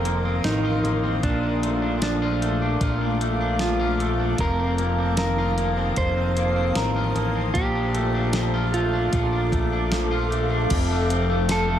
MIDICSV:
0, 0, Header, 1, 6, 480
1, 0, Start_track
1, 0, Tempo, 789474
1, 750, Time_signature, 4, 2, 24, 8
1, 7168, End_track
2, 0, Start_track
2, 0, Title_t, "Ambient pad"
2, 0, Program_c, 0, 92
2, 0, Note_on_c, 0, 70, 75
2, 0, Note_on_c, 0, 77, 68
2, 0, Note_on_c, 0, 84, 66
2, 0, Note_on_c, 0, 87, 76
2, 730, Note_off_c, 0, 70, 0
2, 731, Note_off_c, 0, 84, 0
2, 731, Note_off_c, 0, 87, 0
2, 732, Note_off_c, 0, 77, 0
2, 746, Note_on_c, 0, 81, 67
2, 747, Note_on_c, 0, 86, 74
2, 748, Note_on_c, 0, 57, 67
2, 748, Note_on_c, 0, 77, 67
2, 2649, Note_off_c, 0, 86, 0
2, 2650, Note_off_c, 0, 57, 0
2, 2665, Note_on_c, 0, 72, 68
2, 2668, Note_on_c, 0, 87, 82
2, 4565, Note_off_c, 0, 77, 0
2, 4569, Note_off_c, 0, 72, 0
2, 4570, Note_off_c, 0, 87, 0
2, 4585, Note_on_c, 0, 69, 74
2, 4585, Note_on_c, 0, 77, 64
2, 4588, Note_on_c, 0, 86, 80
2, 6484, Note_off_c, 0, 81, 0
2, 6489, Note_off_c, 0, 69, 0
2, 6489, Note_off_c, 0, 77, 0
2, 6490, Note_off_c, 0, 86, 0
2, 6507, Note_on_c, 0, 87, 87
2, 6508, Note_on_c, 0, 69, 79
2, 6509, Note_on_c, 0, 84, 70
2, 6510, Note_on_c, 0, 77, 72
2, 7168, Note_off_c, 0, 69, 0
2, 7168, Note_off_c, 0, 77, 0
2, 7168, Note_off_c, 0, 84, 0
2, 7168, Note_off_c, 0, 87, 0
2, 7168, End_track
3, 0, Start_track
3, 0, Title_t, "Clean electric guitar"
3, 0, Program_c, 1, 27
3, 0, Note_on_c, 1, 70, 89
3, 270, Note_on_c, 1, 63, 74
3, 283, Note_off_c, 1, 70, 0
3, 747, Note_off_c, 1, 63, 0
3, 750, Note_on_c, 1, 62, 72
3, 1225, Note_off_c, 1, 62, 0
3, 1232, Note_on_c, 1, 62, 72
3, 2189, Note_off_c, 1, 62, 0
3, 2192, Note_on_c, 1, 65, 69
3, 2678, Note_on_c, 1, 70, 88
3, 2685, Note_off_c, 1, 65, 0
3, 3145, Note_off_c, 1, 70, 0
3, 3152, Note_on_c, 1, 70, 80
3, 3630, Note_off_c, 1, 70, 0
3, 3633, Note_on_c, 1, 72, 88
3, 4111, Note_off_c, 1, 72, 0
3, 4114, Note_on_c, 1, 70, 80
3, 4580, Note_off_c, 1, 70, 0
3, 4583, Note_on_c, 1, 67, 83
3, 5312, Note_on_c, 1, 65, 75
3, 5328, Note_off_c, 1, 67, 0
3, 6247, Note_off_c, 1, 65, 0
3, 7000, Note_on_c, 1, 69, 83
3, 7168, Note_off_c, 1, 69, 0
3, 7168, End_track
4, 0, Start_track
4, 0, Title_t, "Clean electric guitar"
4, 0, Program_c, 2, 27
4, 0, Note_on_c, 2, 41, 72
4, 0, Note_on_c, 2, 51, 59
4, 0, Note_on_c, 2, 60, 52
4, 0, Note_on_c, 2, 65, 59
4, 31, Note_on_c, 2, 58, 52
4, 145, Note_off_c, 2, 60, 0
4, 152, Note_on_c, 2, 60, 49
4, 266, Note_off_c, 2, 51, 0
4, 273, Note_on_c, 2, 51, 62
4, 391, Note_off_c, 2, 65, 0
4, 393, Note_on_c, 2, 65, 58
4, 507, Note_off_c, 2, 58, 0
4, 510, Note_on_c, 2, 58, 54
4, 622, Note_off_c, 2, 60, 0
4, 629, Note_on_c, 2, 60, 53
4, 750, Note_off_c, 2, 65, 0
4, 750, Note_on_c, 2, 46, 80
4, 751, Note_off_c, 2, 41, 0
4, 753, Note_on_c, 2, 65, 66
4, 798, Note_off_c, 2, 60, 0
4, 800, Note_off_c, 2, 51, 0
4, 870, Note_on_c, 2, 62, 56
4, 987, Note_off_c, 2, 58, 0
4, 989, Note_on_c, 2, 57, 52
4, 1100, Note_off_c, 2, 62, 0
4, 1107, Note_on_c, 2, 62, 52
4, 1228, Note_on_c, 2, 53, 57
4, 1348, Note_off_c, 2, 65, 0
4, 1350, Note_on_c, 2, 65, 62
4, 1461, Note_off_c, 2, 57, 0
4, 1468, Note_on_c, 2, 57, 54
4, 1583, Note_off_c, 2, 62, 0
4, 1590, Note_on_c, 2, 62, 55
4, 1701, Note_off_c, 2, 46, 0
4, 1708, Note_on_c, 2, 46, 70
4, 1709, Note_off_c, 2, 65, 0
4, 1711, Note_on_c, 2, 65, 61
4, 1823, Note_off_c, 2, 62, 0
4, 1831, Note_on_c, 2, 62, 56
4, 1942, Note_off_c, 2, 57, 0
4, 1949, Note_on_c, 2, 57, 56
4, 2063, Note_off_c, 2, 62, 0
4, 2070, Note_on_c, 2, 62, 52
4, 2187, Note_off_c, 2, 53, 0
4, 2189, Note_on_c, 2, 53, 64
4, 2306, Note_off_c, 2, 65, 0
4, 2308, Note_on_c, 2, 65, 63
4, 2421, Note_off_c, 2, 57, 0
4, 2429, Note_on_c, 2, 57, 53
4, 2543, Note_off_c, 2, 62, 0
4, 2550, Note_on_c, 2, 62, 51
4, 2669, Note_off_c, 2, 46, 0
4, 2674, Note_on_c, 2, 41, 82
4, 2676, Note_off_c, 2, 65, 0
4, 2678, Note_on_c, 2, 65, 64
4, 2718, Note_off_c, 2, 57, 0
4, 2718, Note_off_c, 2, 62, 0
4, 2792, Note_on_c, 2, 60, 60
4, 2911, Note_on_c, 2, 58, 53
4, 3021, Note_off_c, 2, 60, 0
4, 3029, Note_on_c, 2, 60, 56
4, 3146, Note_off_c, 2, 53, 0
4, 3149, Note_on_c, 2, 51, 61
4, 3270, Note_off_c, 2, 65, 0
4, 3272, Note_on_c, 2, 65, 60
4, 3389, Note_off_c, 2, 58, 0
4, 3391, Note_on_c, 2, 58, 59
4, 3501, Note_off_c, 2, 60, 0
4, 3508, Note_on_c, 2, 60, 56
4, 3625, Note_off_c, 2, 41, 0
4, 3630, Note_on_c, 2, 41, 73
4, 3633, Note_off_c, 2, 65, 0
4, 3636, Note_on_c, 2, 65, 53
4, 3743, Note_off_c, 2, 60, 0
4, 3751, Note_on_c, 2, 60, 51
4, 3869, Note_off_c, 2, 58, 0
4, 3871, Note_on_c, 2, 58, 57
4, 3981, Note_off_c, 2, 60, 0
4, 3988, Note_on_c, 2, 60, 52
4, 4105, Note_off_c, 2, 51, 0
4, 4112, Note_on_c, 2, 51, 65
4, 4230, Note_off_c, 2, 65, 0
4, 4233, Note_on_c, 2, 65, 60
4, 4349, Note_off_c, 2, 58, 0
4, 4352, Note_on_c, 2, 58, 55
4, 4463, Note_off_c, 2, 60, 0
4, 4470, Note_on_c, 2, 60, 50
4, 4589, Note_off_c, 2, 65, 0
4, 4589, Note_on_c, 2, 46, 79
4, 4591, Note_off_c, 2, 41, 0
4, 4592, Note_on_c, 2, 65, 66
4, 4638, Note_off_c, 2, 60, 0
4, 4639, Note_off_c, 2, 51, 0
4, 4712, Note_on_c, 2, 62, 56
4, 4827, Note_off_c, 2, 58, 0
4, 4829, Note_on_c, 2, 57, 54
4, 4944, Note_off_c, 2, 62, 0
4, 4951, Note_on_c, 2, 62, 58
4, 5071, Note_on_c, 2, 53, 65
4, 5189, Note_off_c, 2, 65, 0
4, 5191, Note_on_c, 2, 65, 61
4, 5308, Note_off_c, 2, 57, 0
4, 5311, Note_on_c, 2, 57, 52
4, 5424, Note_off_c, 2, 62, 0
4, 5431, Note_on_c, 2, 62, 51
4, 5544, Note_off_c, 2, 46, 0
4, 5551, Note_on_c, 2, 46, 71
4, 5553, Note_off_c, 2, 65, 0
4, 5555, Note_on_c, 2, 65, 60
4, 5662, Note_off_c, 2, 62, 0
4, 5669, Note_on_c, 2, 62, 54
4, 5787, Note_off_c, 2, 57, 0
4, 5789, Note_on_c, 2, 57, 54
4, 5904, Note_off_c, 2, 62, 0
4, 5911, Note_on_c, 2, 62, 50
4, 6027, Note_off_c, 2, 53, 0
4, 6030, Note_on_c, 2, 53, 60
4, 6145, Note_off_c, 2, 65, 0
4, 6147, Note_on_c, 2, 65, 64
4, 6262, Note_off_c, 2, 57, 0
4, 6264, Note_on_c, 2, 57, 55
4, 6379, Note_off_c, 2, 62, 0
4, 6386, Note_on_c, 2, 62, 49
4, 6505, Note_on_c, 2, 41, 81
4, 6556, Note_off_c, 2, 62, 0
4, 6559, Note_off_c, 2, 46, 0
4, 6626, Note_off_c, 2, 57, 0
4, 6628, Note_on_c, 2, 57, 63
4, 6746, Note_on_c, 2, 60, 61
4, 6860, Note_off_c, 2, 57, 0
4, 6867, Note_on_c, 2, 57, 59
4, 6984, Note_off_c, 2, 65, 0
4, 6986, Note_on_c, 2, 65, 68
4, 7096, Note_off_c, 2, 57, 0
4, 7103, Note_on_c, 2, 57, 62
4, 7168, Note_off_c, 2, 41, 0
4, 7168, Note_off_c, 2, 53, 0
4, 7168, Note_off_c, 2, 57, 0
4, 7168, Note_off_c, 2, 60, 0
4, 7168, Note_off_c, 2, 65, 0
4, 7168, End_track
5, 0, Start_track
5, 0, Title_t, "Analog synth bass"
5, 0, Program_c, 3, 38
5, 0, Note_on_c, 3, 29, 101
5, 247, Note_off_c, 3, 29, 0
5, 271, Note_on_c, 3, 33, 89
5, 499, Note_off_c, 3, 33, 0
5, 509, Note_on_c, 3, 33, 77
5, 738, Note_off_c, 3, 33, 0
5, 749, Note_on_c, 3, 34, 94
5, 1685, Note_off_c, 3, 34, 0
5, 1708, Note_on_c, 3, 34, 98
5, 2645, Note_off_c, 3, 34, 0
5, 2669, Note_on_c, 3, 29, 98
5, 3605, Note_off_c, 3, 29, 0
5, 3629, Note_on_c, 3, 29, 98
5, 4086, Note_off_c, 3, 29, 0
5, 4108, Note_on_c, 3, 33, 92
5, 4337, Note_off_c, 3, 33, 0
5, 4345, Note_on_c, 3, 33, 83
5, 4576, Note_off_c, 3, 33, 0
5, 4592, Note_on_c, 3, 34, 96
5, 5527, Note_off_c, 3, 34, 0
5, 5552, Note_on_c, 3, 34, 103
5, 6487, Note_off_c, 3, 34, 0
5, 6509, Note_on_c, 3, 29, 105
5, 7168, Note_off_c, 3, 29, 0
5, 7168, End_track
6, 0, Start_track
6, 0, Title_t, "Drums"
6, 32, Note_on_c, 9, 42, 53
6, 92, Note_off_c, 9, 42, 0
6, 269, Note_on_c, 9, 38, 90
6, 269, Note_on_c, 9, 42, 58
6, 330, Note_off_c, 9, 38, 0
6, 330, Note_off_c, 9, 42, 0
6, 515, Note_on_c, 9, 42, 41
6, 576, Note_off_c, 9, 42, 0
6, 749, Note_on_c, 9, 36, 97
6, 750, Note_on_c, 9, 42, 69
6, 810, Note_off_c, 9, 36, 0
6, 811, Note_off_c, 9, 42, 0
6, 992, Note_on_c, 9, 42, 53
6, 1053, Note_off_c, 9, 42, 0
6, 1226, Note_on_c, 9, 42, 62
6, 1228, Note_on_c, 9, 38, 98
6, 1287, Note_off_c, 9, 42, 0
6, 1289, Note_off_c, 9, 38, 0
6, 1473, Note_on_c, 9, 42, 44
6, 1534, Note_off_c, 9, 42, 0
6, 1708, Note_on_c, 9, 36, 84
6, 1708, Note_on_c, 9, 42, 72
6, 1769, Note_off_c, 9, 36, 0
6, 1769, Note_off_c, 9, 42, 0
6, 1953, Note_on_c, 9, 42, 51
6, 2013, Note_off_c, 9, 42, 0
6, 2185, Note_on_c, 9, 38, 92
6, 2185, Note_on_c, 9, 42, 59
6, 2246, Note_off_c, 9, 38, 0
6, 2246, Note_off_c, 9, 42, 0
6, 2433, Note_on_c, 9, 42, 41
6, 2494, Note_off_c, 9, 42, 0
6, 2665, Note_on_c, 9, 42, 71
6, 2668, Note_on_c, 9, 36, 97
6, 2726, Note_off_c, 9, 42, 0
6, 2729, Note_off_c, 9, 36, 0
6, 2909, Note_on_c, 9, 42, 51
6, 2969, Note_off_c, 9, 42, 0
6, 3144, Note_on_c, 9, 42, 61
6, 3145, Note_on_c, 9, 38, 100
6, 3204, Note_off_c, 9, 42, 0
6, 3206, Note_off_c, 9, 38, 0
6, 3391, Note_on_c, 9, 42, 45
6, 3451, Note_off_c, 9, 42, 0
6, 3626, Note_on_c, 9, 42, 73
6, 3629, Note_on_c, 9, 36, 83
6, 3687, Note_off_c, 9, 42, 0
6, 3689, Note_off_c, 9, 36, 0
6, 3871, Note_on_c, 9, 42, 55
6, 3932, Note_off_c, 9, 42, 0
6, 4107, Note_on_c, 9, 38, 96
6, 4107, Note_on_c, 9, 42, 58
6, 4167, Note_off_c, 9, 42, 0
6, 4168, Note_off_c, 9, 38, 0
6, 4351, Note_on_c, 9, 42, 43
6, 4412, Note_off_c, 9, 42, 0
6, 4590, Note_on_c, 9, 36, 98
6, 4590, Note_on_c, 9, 42, 70
6, 4651, Note_off_c, 9, 36, 0
6, 4651, Note_off_c, 9, 42, 0
6, 4831, Note_on_c, 9, 42, 51
6, 4892, Note_off_c, 9, 42, 0
6, 5065, Note_on_c, 9, 42, 63
6, 5066, Note_on_c, 9, 38, 95
6, 5125, Note_off_c, 9, 42, 0
6, 5127, Note_off_c, 9, 38, 0
6, 5313, Note_on_c, 9, 42, 46
6, 5374, Note_off_c, 9, 42, 0
6, 5549, Note_on_c, 9, 42, 78
6, 5551, Note_on_c, 9, 36, 79
6, 5610, Note_off_c, 9, 42, 0
6, 5612, Note_off_c, 9, 36, 0
6, 5790, Note_on_c, 9, 36, 85
6, 5794, Note_on_c, 9, 42, 51
6, 5851, Note_off_c, 9, 36, 0
6, 5855, Note_off_c, 9, 42, 0
6, 6029, Note_on_c, 9, 38, 94
6, 6029, Note_on_c, 9, 42, 61
6, 6090, Note_off_c, 9, 38, 0
6, 6090, Note_off_c, 9, 42, 0
6, 6276, Note_on_c, 9, 42, 42
6, 6337, Note_off_c, 9, 42, 0
6, 6507, Note_on_c, 9, 42, 73
6, 6507, Note_on_c, 9, 49, 90
6, 6510, Note_on_c, 9, 36, 107
6, 6568, Note_off_c, 9, 42, 0
6, 6568, Note_off_c, 9, 49, 0
6, 6571, Note_off_c, 9, 36, 0
6, 6751, Note_on_c, 9, 42, 56
6, 6812, Note_off_c, 9, 42, 0
6, 6985, Note_on_c, 9, 42, 70
6, 6987, Note_on_c, 9, 38, 112
6, 6989, Note_on_c, 9, 54, 61
6, 7046, Note_off_c, 9, 42, 0
6, 7048, Note_off_c, 9, 38, 0
6, 7050, Note_off_c, 9, 54, 0
6, 7168, End_track
0, 0, End_of_file